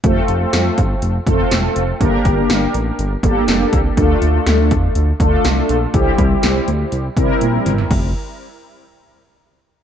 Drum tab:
CC |----------------|----------------|----------------|----------------|
HH |x-x-x-x-x-x-x-x-|x-x-x-x-x-x-x-x-|x-x-x-x-x-x-x-x-|x-x-x-x-x-x-x-x-|
SD |----o-------o---|----o-------o---|----o-------o---|----o-----------|
T1 |----------------|----------------|----------------|------------o---|
T2 |----------------|----------------|----------------|--------------o-|
FT |----------------|----------------|----------------|---------------o|
BD |o-----o---o-----|o-o-------o---o-|o-----o---o-----|o-o-------o-----|

CC |x---------------|
HH |----------------|
SD |----------------|
T1 |----------------|
T2 |----------------|
FT |----------------|
BD |o---------------|